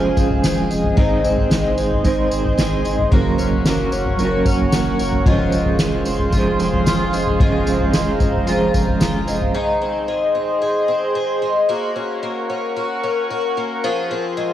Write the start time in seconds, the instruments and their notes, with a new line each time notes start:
Already playing: sub bass F1, clean electric guitar F2 F3 G#3 C#4 G#4 C5, twelve-string acoustic guitar F3 G#3 C4 G#4, ambient pad G#4 F5 G#5
0.17 sub bass F1, twelve-string acoustic guitar C4, kick, tambourine
0.31 floor tom
0.44 sub bass F1, twelve-string acoustic guitar G#4, snare, tambourine
0.71 sub bass F1, twelve-string acoustic guitar G#3, tambourine
0.84 floor tom
0.96 sub bass G#1, twelve-string acoustic guitar D#3 G#4, clean electric guitar G#3 C4 D#4 C5, ambient pad C5 D#5 C6, kick, floor tom
1.24 sub bass G#1, twelve-string acoustic guitar C4, tambourine
1.38 floor tom
1.50 sub bass G#1, clean electric guitar G#3 C4 D#4, twelve-string acoustic guitar G#3, snare, tambourine
1.55 clean electric guitar C5
1.78 sub bass G#1, twelve-string acoustic guitar C4, tambourine
1.91 floor tom
2.04 sub bass G#1, clean electric guitar G#3 C4 D#4 C5, twelve-string acoustic guitar G#4, kick, tambourine
2.31 sub bass G#1, twelve-string acoustic guitar C4, tambourine
2.45 floor tom
2.57 sub bass G#1, clean electric guitar G#3 D#4, twelve-string acoustic guitar G#4, snare, tambourine
2.61 clean electric guitar C4 C5
2.85 sub bass G#1, twelve-string acoustic guitar G#3, tambourine
2.99 floor tom
3.11 sub bass F#1, clean electric guitar F#3 A#3 C#4 F#4, twelve-string acoustic guitar A#3 F#4, ambient pad A#4 C#5 F#5 C#6, kick, floor tom
3.15 clean electric guitar A#4
3.38 sub bass F#1, twelve-string acoustic guitar C#4, tambourine
3.52 floor tom
3.64 sub bass F#1, clean electric guitar A#3 C#4 F#4, twelve-string acoustic guitar A#3, snare, tambourine
3.70 clean electric guitar A#4
3.92 sub bass F#1, twelve-string acoustic guitar C#4, tambourine
4.06 floor tom
4.17 sub bass F#1, clean electric guitar F#3 A#3, twelve-string acoustic guitar F#4, tambourine
4.21 clean electric guitar C#4 F#4 A#4
4.46 sub bass F#1, twelve-string acoustic guitar C#4, kick, tambourine
4.59 floor tom
4.73 sub bass F#1, twelve-string acoustic guitar F#4, snare, tambourine
4.99 sub bass F#1, twelve-string acoustic guitar A#3, tambourine
5.12 floor tom
5.24 sub bass F1, clean electric guitar F2 F3 G#3, twelve-string acoustic guitar G#3 F4, ambient pad G#4 C5 F5 C6, kick, floor tom
5.29 clean electric guitar C#4 G#4 C5
5.52 sub bass F1, twelve-string acoustic guitar C4, tambourine
5.66 floor tom
5.79 sub bass F1, twelve-string acoustic guitar G#3, snare, tambourine
6.05 sub bass F1, twelve-string acoustic guitar C4, tambourine
6.19 floor tom
6.30 sub bass F1, clean electric guitar F2 F3 G#3, twelve-string acoustic guitar F4, kick, tambourine
6.36 clean electric guitar C#4 G#4 C5
6.59 sub bass F1, twelve-string acoustic guitar C4, tambourine
6.73 floor tom
6.86 sub bass F1, twelve-string acoustic guitar F4, snare, tambourine
7.13 sub bass F1, twelve-string acoustic guitar G#3, tambourine
7.27 floor tom
7.39 sub bass F1, clean electric guitar F2 F3 G#3 C#4 G#4 C5, twelve-string acoustic guitar G#3 F4, ambient pad A#5, kick, floor tom
7.67 sub bass F1, twelve-string acoustic guitar C4, tambourine
7.80 floor tom
7.92 sub bass F1, clean electric guitar G#3 C#4 G#4, twelve-string acoustic guitar G#3, snare, tambourine
7.98 clean electric guitar C5
8.20 sub bass F1, twelve-string acoustic guitar C4, kick, floor tom, tambourine
8.34 floor tom
8.45 sub bass F1, clean electric guitar F2 F3 G#3, twelve-string acoustic guitar F4, tambourine
8.50 clean electric guitar C#4 G#4 C5
8.74 sub bass F1, twelve-string acoustic guitar C4, kick, tambourine
8.87 floor tom
9.00 sub bass F1, twelve-string acoustic guitar F4, snare, tambourine
9.28 sub bass F1, twelve-string acoustic guitar G#3, tambourine
9.41 floor tom
9.54 twelve-string acoustic guitar D#3 G#4, ambient pad G#4 C5 D#5 C6
9.82 twelve-string acoustic guitar C4
10.08 twelve-string acoustic guitar G#3
10.35 twelve-string acoustic guitar C4
10.62 twelve-string acoustic guitar G#4
10.88 twelve-string acoustic guitar C4
11.15 twelve-string acoustic guitar G#4
11.42 twelve-string acoustic guitar G#3
11.69 twelve-string acoustic guitar A#3 F#4, ambient pad A#4 F#5 C#6
11.96 twelve-string acoustic guitar C#4
12.23 twelve-string acoustic guitar A#3
12.50 twelve-string acoustic guitar C#4
12.76 twelve-string acoustic guitar F#4
13.04 twelve-string acoustic guitar C#4
13.31 twelve-string acoustic guitar F#4
13.57 twelve-string acoustic guitar A#3
13.83 ambient pad F3 G#4 F5 C6, twelve-string acoustic guitar F3 G#4
14.11 twelve-string acoustic guitar C4
14.37 twelve-string acoustic guitar G#3